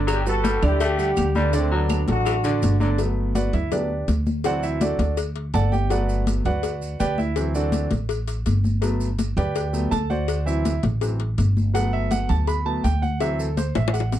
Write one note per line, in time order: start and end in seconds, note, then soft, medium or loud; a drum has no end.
0.00 0.57 G1 medium
0.00 0.20 D3 medium
0.00 0.20 D4 medium
0.00 0.20 D5 medium
0.07 0.27 F#3 medium
0.07 0.26 D4 medium
0.07 0.26 G4 loud
0.07 cowbell loud
0.07 high conga soft
0.07 claves medium
0.07 maracas medium
0.26 0.56 G3 medium
0.26 0.56 F#4 medium
0.26 0.61 F#4 medium
0.26 0.61 A4 loud
0.26 0.57 B4 medium
0.26 high conga soft
0.26 maracas medium
0.44 0.63 G3 medium
0.44 cowbell medium
0.44 high conga medium
0.44 maracas medium
0.62 1.13 D2 loud
0.62 0.92 D3 medium
0.62 0.93 D4 medium
0.62 0.80 E4 medium
0.62 0.80 G4 loud
0.62 0.93 D5 medium
0.62 cowbell medium
0.62 low conga medium
0.62 claves medium
0.62 maracas soft
0.80 1.11 A3 medium
0.80 1.33 D4 medium
0.80 1.32 G4 loud
0.80 cowbell loud
0.80 high conga soft
0.80 maracas medium
0.98 1.28 G3 medium
0.98 1.29 G4 medium
0.98 1.29 F#5 medium
0.98 high conga soft
0.98 maracas medium
1.17 2.03 D2 loud
1.17 cowbell medium
1.17 high conga medium
1.17 claves medium
1.17 maracas medium
1.35 1.50 D3 medium
1.35 1.55 G3 medium
1.35 1.54 B3 medium
1.35 1.51 D4 medium
1.35 1.53 D4 medium
1.35 1.51 D5 medium
1.35 high conga medium
1.35 maracas soft
1.53 1.69 D3 medium
1.53 1.73 A3 medium
1.53 1.73 C4 medium
1.53 1.69 D4 medium
1.53 1.69 D5 medium
1.53 cowbell loud
1.53 maracas medium
1.71 2.02 F#3 medium
1.71 2.09 B3 medium
1.71 2.08 D4 loud
1.71 2.02 F#4 medium
1.71 2.02 A4 medium
1.71 high conga soft
1.90 cowbell medium
1.90 high conga medium
1.90 claves medium
1.90 maracas medium
2.08 2.59 A1 medium
2.08 2.38 F#3 medium
2.08 2.78 D4 medium
2.08 2.38 F#4 medium
2.08 2.78 F#4 loud
2.08 2.38 A4 medium
2.08 cowbell medium
2.08 high conga medium
2.08 maracas soft
2.26 2.35 E3 medium
2.26 cowbell loud
2.26 high conga soft
2.26 claves medium
2.26 maracas medium
2.44 2.74 D3 loud
2.44 2.64 D3 medium
2.44 2.74 D4 medium
2.44 2.75 D5 loud
2.44 cowbell medium
2.44 high conga soft
2.44 maracas medium
2.62 3.48 G1 loud
2.62 cowbell medium
2.62 high conga medium
2.62 maracas medium
2.80 2.95 D3 medium
2.80 2.90 F#3 medium
2.80 2.96 D4 medium
2.80 2.96 D5 medium
2.80 high conga medium
2.80 maracas soft
2.98 3.50 F#3 medium
2.98 3.51 A3 medium
2.98 3.51 B3 medium
2.98 cowbell medium
2.98 maracas medium
3.17 high conga soft
3.35 3.53 F#4 medium
3.35 3.53 B4 medium
3.35 3.53 D5 medium
3.35 3.53 F#5 medium
3.35 cowbell medium
3.35 high conga medium
3.35 maracas medium
3.53 4.04 D2 medium
3.53 3.72 E4 medium
3.53 3.72 E5 medium
3.53 cowbell medium
3.53 low conga medium
3.53 maracas soft
3.72 3.88 F#3 soft
3.72 3.88 A3 soft
3.72 3.89 B3 soft
3.72 4.06 D4 medium
3.72 4.06 G4 soft
3.72 4.06 B4 soft
3.72 4.06 D5 medium
3.72 cowbell loud
3.72 high conga soft
3.72 low conga medium
3.72 maracas medium
3.90 high conga soft
4.08 4.94 D2 medium
4.08 cowbell medium
4.08 high conga medium
4.08 maracas medium
4.26 high conga medium
4.26 maracas soft
4.44 4.97 E3 medium
4.44 4.97 F#3 medium
4.44 4.97 C4 medium
4.44 4.63 F#4 medium
4.44 4.63 C5 medium
4.44 4.63 D5 medium
4.44 4.63 F#5 loud
4.44 cowbell loud
4.44 high conga soft
4.44 maracas medium
4.63 4.81 E4 medium
4.63 4.81 E5 medium
4.63 high conga soft
4.63 maracas medium
4.81 5.16 D4 medium
4.81 5.15 F#4 medium
4.81 5.15 A4 medium
4.81 5.15 D5 medium
4.81 cowbell medium
4.81 high conga loud
4.81 maracas medium
4.99 5.50 D2 medium
4.99 cowbell medium
4.99 high conga loud
4.99 maracas soft
5.17 cowbell loud
5.17 high conga soft
5.17 maracas medium
5.36 cowbell medium
5.36 high conga soft
5.54 6.39 G1 loud
5.54 5.72 A4 medium
5.54 5.72 D5 medium
5.54 5.72 F#5 medium
5.54 5.72 A5 loud
5.54 cowbell medium
5.54 high conga medium
5.54 maracas medium
5.72 5.90 G4 medium
5.72 5.90 G5 medium
5.72 high conga medium
5.72 maracas soft
5.90 6.42 F#3 medium
5.90 6.43 A3 medium
5.90 6.43 B3 medium
5.90 6.25 F#4 medium
5.90 6.25 B4 medium
5.90 6.25 D5 medium
5.90 6.25 F#5 medium
5.90 cowbell medium
5.90 high conga soft
5.90 maracas medium
6.09 high conga soft
6.09 maracas medium
6.27 cowbell medium
6.27 high conga medium
6.27 maracas medium
6.45 6.97 D2 medium
6.45 6.97 F#4 medium
6.45 6.97 B4 medium
6.45 6.97 D5 medium
6.45 6.96 F#5 medium
6.45 cowbell medium
6.45 low conga medium
6.45 maracas soft
6.63 cowbell medium
6.63 high conga soft
6.63 maracas medium
6.82 high conga soft
6.82 maracas medium
7.00 7.86 D2 medium
7.00 7.18 G4 medium
7.00 7.18 B4 medium
7.00 7.18 D5 medium
7.00 7.18 G5 medium
7.00 cowbell medium
7.00 high conga medium
7.00 maracas medium
7.18 7.52 E4 medium
7.18 7.52 E5 medium
7.18 high conga medium
7.18 maracas soft
7.36 7.88 E3 medium
7.36 7.89 F#3 medium
7.36 7.89 C4 medium
7.36 cowbell loud
7.36 maracas medium
7.54 7.89 D4 medium
7.54 7.89 F#4 medium
7.54 7.89 A4 medium
7.54 7.89 D5 medium
7.54 high conga soft
7.54 maracas medium
7.72 cowbell medium
7.72 high conga medium
7.72 maracas medium
7.91 8.42 A1 medium
7.91 cowbell medium
7.91 high conga medium
7.91 maracas soft
8.09 cowbell medium
8.09 high conga soft
8.09 maracas medium
8.28 cowbell medium
8.28 high conga soft
8.28 maracas medium
8.46 9.32 G1 medium
8.46 cowbell medium
8.46 high conga medium
8.46 maracas medium
8.64 high conga medium
8.64 maracas soft
8.82 9.06 F#3 medium
8.82 9.07 A3 medium
8.82 9.07 B3 medium
8.82 cowbell medium
8.82 maracas medium
9.01 high conga soft
9.01 maracas medium
9.19 cowbell medium
9.19 high conga medium
9.19 maracas medium
9.37 9.88 D2 loud
9.37 9.88 G4 medium
9.37 9.88 B4 medium
9.37 9.88 D5 medium
9.37 9.88 G5 medium
9.37 cowbell medium
9.37 low conga medium
9.37 maracas soft
9.56 cowbell loud
9.56 high conga soft
9.56 maracas medium
9.73 9.90 F#3 soft
9.73 9.90 A3 medium
9.73 9.90 B3 medium
9.73 high conga soft
9.73 maracas medium
9.91 10.77 D2 medium
9.91 10.10 A4 medium
9.91 10.09 A5 loud
9.91 cowbell medium
9.91 high conga medium
9.91 maracas medium
10.10 10.44 F#4 medium
10.10 10.44 C5 medium
10.10 10.44 D5 medium
10.10 10.44 F#5 medium
10.10 high conga medium
10.10 maracas soft
10.28 cowbell loud
10.28 high conga soft
10.28 maracas medium
10.46 10.71 E3 medium
10.46 10.71 F#3 soft
10.46 10.71 C4 medium
10.46 10.81 E4 medium
10.46 10.81 E5 medium
10.46 high conga soft
10.46 maracas medium
10.65 cowbell medium
10.65 high conga medium
10.65 maracas medium
10.83 11.34 A1 loud
10.83 cowbell medium
10.83 high conga loud
10.83 maracas soft
11.01 11.18 E3 soft
11.01 11.18 F#3 soft
11.01 11.18 C4 soft
11.01 cowbell medium
11.01 high conga soft
11.01 maracas medium
11.20 cowbell medium
11.20 high conga soft
11.38 12.24 G1 loud
11.38 cowbell medium
11.38 high conga medium
11.38 maracas medium
11.57 high conga medium
11.57 maracas soft
11.74 12.64 F#3 medium
11.74 12.64 A3 medium
11.74 12.65 B3 medium
11.74 11.92 F#5 loud
11.74 cowbell loud
11.74 maracas medium
11.93 12.11 E5 loud
11.93 high conga soft
12.11 12.29 F#5 loud
12.11 cowbell medium
12.11 high conga medium
12.11 maracas medium
12.29 12.81 D2 medium
12.29 12.47 A5 medium
12.29 cowbell medium
12.29 low conga medium
12.29 maracas soft
12.47 12.66 B5 medium
12.47 cowbell medium
12.47 high conga soft
12.47 maracas medium
12.66 12.82 F#3 soft
12.66 12.83 A3 soft
12.66 12.83 B3 medium
12.66 12.84 A5 medium
12.66 high conga soft
12.84 13.70 D2 loud
12.84 13.02 G5 medium
12.84 cowbell medium
12.84 high conga medium
12.84 maracas medium
13.02 13.20 F#5 medium
13.02 high conga medium
13.02 maracas soft
13.20 13.45 E3 medium
13.20 13.45 F#3 medium
13.20 13.45 C4 medium
13.20 13.39 E5 medium
13.20 cowbell loud
13.20 maracas medium
13.39 13.57 A4 medium
13.39 high conga soft
13.39 maracas medium
13.57 13.75 C5 medium
13.57 cowbell medium
13.57 high conga medium
13.57 maracas medium
13.75 14.19 A1 loud
13.75 13.93 E5 medium
13.75 cowbell medium
13.75 high bongo medium
13.75 high conga loud
13.75 maracas soft
13.88 high bongo loud
13.93 14.19 F#5 medium
13.93 cowbell loud
13.93 high conga soft
13.93 maracas medium
14.00 high bongo medium
14.12 cowbell medium
14.12 low bongo medium
14.12 high conga soft
14.12 maracas medium